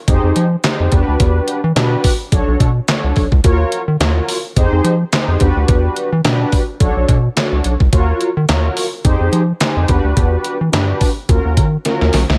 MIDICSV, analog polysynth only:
0, 0, Header, 1, 2, 480
1, 0, Start_track
1, 0, Tempo, 560748
1, 1026, Time_signature, 4, 2, 24, 8
1, 10599, End_track
2, 0, Start_track
2, 0, Title_t, "Analog polysynth"
2, 0, Program_c, 0, 90
2, 67, Note_on_c, 0, 63, 103
2, 70, Note_on_c, 0, 67, 90
2, 73, Note_on_c, 0, 68, 82
2, 75, Note_on_c, 0, 72, 97
2, 385, Note_off_c, 0, 63, 0
2, 386, Note_off_c, 0, 67, 0
2, 388, Note_off_c, 0, 68, 0
2, 388, Note_off_c, 0, 72, 0
2, 543, Note_on_c, 0, 63, 84
2, 546, Note_on_c, 0, 67, 86
2, 549, Note_on_c, 0, 68, 75
2, 553, Note_on_c, 0, 72, 94
2, 781, Note_off_c, 0, 67, 0
2, 785, Note_off_c, 0, 63, 0
2, 788, Note_off_c, 0, 68, 0
2, 788, Note_on_c, 0, 62, 96
2, 789, Note_off_c, 0, 72, 0
2, 789, Note_on_c, 0, 66, 77
2, 791, Note_on_c, 0, 67, 88
2, 793, Note_on_c, 0, 71, 97
2, 1375, Note_off_c, 0, 62, 0
2, 1375, Note_off_c, 0, 66, 0
2, 1376, Note_off_c, 0, 67, 0
2, 1377, Note_off_c, 0, 71, 0
2, 1500, Note_on_c, 0, 62, 96
2, 1502, Note_on_c, 0, 66, 91
2, 1505, Note_on_c, 0, 67, 86
2, 1506, Note_on_c, 0, 71, 105
2, 1821, Note_off_c, 0, 62, 0
2, 1822, Note_off_c, 0, 66, 0
2, 1824, Note_off_c, 0, 67, 0
2, 1824, Note_off_c, 0, 71, 0
2, 1981, Note_on_c, 0, 62, 85
2, 1985, Note_on_c, 0, 66, 81
2, 1987, Note_on_c, 0, 69, 82
2, 1990, Note_on_c, 0, 73, 94
2, 2302, Note_off_c, 0, 62, 0
2, 2304, Note_off_c, 0, 66, 0
2, 2305, Note_off_c, 0, 69, 0
2, 2306, Note_off_c, 0, 73, 0
2, 2465, Note_on_c, 0, 62, 81
2, 2467, Note_on_c, 0, 66, 69
2, 2472, Note_on_c, 0, 69, 78
2, 2472, Note_on_c, 0, 73, 93
2, 2784, Note_off_c, 0, 62, 0
2, 2785, Note_off_c, 0, 66, 0
2, 2787, Note_off_c, 0, 69, 0
2, 2787, Note_off_c, 0, 73, 0
2, 2946, Note_on_c, 0, 65, 95
2, 2946, Note_on_c, 0, 66, 77
2, 2950, Note_on_c, 0, 70, 87
2, 2951, Note_on_c, 0, 73, 112
2, 3264, Note_off_c, 0, 65, 0
2, 3264, Note_off_c, 0, 66, 0
2, 3266, Note_off_c, 0, 70, 0
2, 3267, Note_off_c, 0, 73, 0
2, 3424, Note_on_c, 0, 65, 94
2, 3427, Note_on_c, 0, 66, 83
2, 3429, Note_on_c, 0, 70, 82
2, 3433, Note_on_c, 0, 73, 89
2, 3743, Note_off_c, 0, 65, 0
2, 3744, Note_off_c, 0, 66, 0
2, 3746, Note_off_c, 0, 70, 0
2, 3748, Note_off_c, 0, 73, 0
2, 3906, Note_on_c, 0, 63, 100
2, 3910, Note_on_c, 0, 67, 86
2, 3910, Note_on_c, 0, 68, 80
2, 3913, Note_on_c, 0, 72, 110
2, 4224, Note_off_c, 0, 63, 0
2, 4226, Note_off_c, 0, 67, 0
2, 4226, Note_off_c, 0, 68, 0
2, 4228, Note_off_c, 0, 72, 0
2, 4385, Note_on_c, 0, 63, 86
2, 4386, Note_on_c, 0, 67, 75
2, 4390, Note_on_c, 0, 68, 78
2, 4394, Note_on_c, 0, 72, 93
2, 4625, Note_off_c, 0, 63, 0
2, 4626, Note_off_c, 0, 67, 0
2, 4628, Note_off_c, 0, 68, 0
2, 4629, Note_on_c, 0, 62, 86
2, 4630, Note_off_c, 0, 72, 0
2, 4632, Note_on_c, 0, 66, 88
2, 4635, Note_on_c, 0, 71, 102
2, 4636, Note_on_c, 0, 67, 89
2, 5215, Note_off_c, 0, 62, 0
2, 5216, Note_off_c, 0, 66, 0
2, 5218, Note_off_c, 0, 71, 0
2, 5219, Note_off_c, 0, 67, 0
2, 5343, Note_on_c, 0, 62, 100
2, 5347, Note_on_c, 0, 66, 82
2, 5349, Note_on_c, 0, 67, 80
2, 5351, Note_on_c, 0, 71, 103
2, 5662, Note_off_c, 0, 62, 0
2, 5664, Note_off_c, 0, 66, 0
2, 5665, Note_off_c, 0, 67, 0
2, 5666, Note_off_c, 0, 71, 0
2, 5823, Note_on_c, 0, 66, 74
2, 5824, Note_on_c, 0, 62, 88
2, 5827, Note_on_c, 0, 69, 82
2, 5829, Note_on_c, 0, 73, 99
2, 6143, Note_off_c, 0, 62, 0
2, 6143, Note_off_c, 0, 66, 0
2, 6145, Note_off_c, 0, 69, 0
2, 6145, Note_off_c, 0, 73, 0
2, 6300, Note_on_c, 0, 62, 83
2, 6304, Note_on_c, 0, 66, 78
2, 6306, Note_on_c, 0, 69, 68
2, 6309, Note_on_c, 0, 73, 95
2, 6621, Note_off_c, 0, 62, 0
2, 6623, Note_off_c, 0, 66, 0
2, 6624, Note_off_c, 0, 69, 0
2, 6625, Note_off_c, 0, 73, 0
2, 6781, Note_on_c, 0, 65, 98
2, 6782, Note_on_c, 0, 66, 87
2, 6786, Note_on_c, 0, 70, 80
2, 6787, Note_on_c, 0, 73, 101
2, 7102, Note_off_c, 0, 65, 0
2, 7102, Note_off_c, 0, 66, 0
2, 7104, Note_off_c, 0, 70, 0
2, 7104, Note_off_c, 0, 73, 0
2, 7262, Note_on_c, 0, 65, 88
2, 7263, Note_on_c, 0, 66, 83
2, 7268, Note_on_c, 0, 70, 86
2, 7269, Note_on_c, 0, 73, 98
2, 7582, Note_off_c, 0, 65, 0
2, 7583, Note_off_c, 0, 66, 0
2, 7585, Note_off_c, 0, 70, 0
2, 7585, Note_off_c, 0, 73, 0
2, 7740, Note_on_c, 0, 63, 92
2, 7740, Note_on_c, 0, 67, 93
2, 7743, Note_on_c, 0, 68, 78
2, 7746, Note_on_c, 0, 72, 103
2, 8061, Note_off_c, 0, 63, 0
2, 8061, Note_off_c, 0, 67, 0
2, 8063, Note_off_c, 0, 68, 0
2, 8064, Note_off_c, 0, 72, 0
2, 8221, Note_on_c, 0, 67, 78
2, 8222, Note_on_c, 0, 63, 93
2, 8226, Note_on_c, 0, 68, 92
2, 8227, Note_on_c, 0, 72, 102
2, 8453, Note_off_c, 0, 67, 0
2, 8461, Note_on_c, 0, 66, 88
2, 8462, Note_on_c, 0, 62, 94
2, 8463, Note_on_c, 0, 67, 87
2, 8464, Note_off_c, 0, 63, 0
2, 8466, Note_off_c, 0, 68, 0
2, 8467, Note_off_c, 0, 72, 0
2, 8468, Note_on_c, 0, 71, 108
2, 9051, Note_off_c, 0, 62, 0
2, 9051, Note_off_c, 0, 66, 0
2, 9052, Note_off_c, 0, 67, 0
2, 9054, Note_off_c, 0, 71, 0
2, 9177, Note_on_c, 0, 62, 105
2, 9178, Note_on_c, 0, 66, 80
2, 9183, Note_on_c, 0, 67, 87
2, 9184, Note_on_c, 0, 71, 107
2, 9499, Note_off_c, 0, 62, 0
2, 9500, Note_off_c, 0, 66, 0
2, 9503, Note_off_c, 0, 67, 0
2, 9503, Note_off_c, 0, 71, 0
2, 9660, Note_on_c, 0, 61, 77
2, 9661, Note_on_c, 0, 65, 83
2, 9667, Note_on_c, 0, 66, 74
2, 9669, Note_on_c, 0, 70, 100
2, 9981, Note_off_c, 0, 61, 0
2, 9982, Note_off_c, 0, 65, 0
2, 9984, Note_off_c, 0, 66, 0
2, 9985, Note_off_c, 0, 70, 0
2, 10142, Note_on_c, 0, 61, 84
2, 10145, Note_on_c, 0, 65, 72
2, 10146, Note_on_c, 0, 66, 76
2, 10147, Note_on_c, 0, 70, 96
2, 10462, Note_off_c, 0, 61, 0
2, 10464, Note_off_c, 0, 65, 0
2, 10464, Note_off_c, 0, 66, 0
2, 10465, Note_off_c, 0, 70, 0
2, 10599, End_track
0, 0, End_of_file